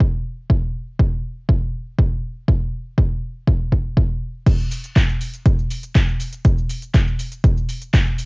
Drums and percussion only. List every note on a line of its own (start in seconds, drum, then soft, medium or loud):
0.00 kick loud
0.50 kick loud
0.99 kick loud
1.49 kick loud
1.99 kick loud
2.48 kick loud
2.98 kick loud
3.47 kick loud
3.72 kick medium
3.97 kick loud
4.47 kick loud
4.47 closed hi-hat medium
4.47 crash loud
4.47 shaker soft
4.60 shaker soft
4.71 open hi-hat loud
4.71 shaker medium
4.84 closed hi-hat medium
4.84 shaker soft
4.96 kick loud
4.96 clap loud
4.96 closed hi-hat medium
4.96 shaker soft
5.09 shaker soft
5.21 open hi-hat loud
5.21 shaker medium
5.34 closed hi-hat medium
5.34 shaker soft
5.46 kick loud
5.46 closed hi-hat medium
5.46 shaker soft
5.59 shaker soft
5.70 open hi-hat loud
5.70 shaker medium
5.83 closed hi-hat medium
5.83 shaker soft
5.95 kick loud
5.95 clap loud
5.95 closed hi-hat medium
5.95 shaker soft
6.08 shaker soft
6.20 open hi-hat loud
6.20 shaker medium
6.32 closed hi-hat medium
6.32 shaker soft
6.45 kick loud
6.45 closed hi-hat medium
6.45 shaker soft
6.58 shaker soft
6.69 open hi-hat loud
6.69 shaker medium
6.82 closed hi-hat medium
6.82 shaker soft
6.94 kick loud
6.94 clap loud
6.94 closed hi-hat medium
6.94 shaker soft
7.07 shaker soft
7.19 open hi-hat loud
7.19 shaker medium
7.32 closed hi-hat medium
7.32 shaker soft
7.44 kick loud
7.44 closed hi-hat medium
7.44 shaker soft
7.57 shaker soft
7.69 open hi-hat loud
7.69 shaker medium
7.81 closed hi-hat medium
7.81 shaker soft
7.93 kick loud
7.93 clap loud
7.93 closed hi-hat medium
7.93 shaker soft
8.06 shaker soft
8.18 open hi-hat loud
8.18 shaker medium